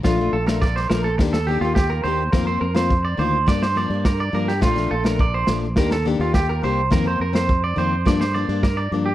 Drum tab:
SD |o--oooo-oo--o---|o--o----oo--o--o|oo-o--o-oo--o---|o--o----oo--o---|
BD |o---o---o---o---|o---o---o---o---|o---o---o---o---|o---o---o---o---|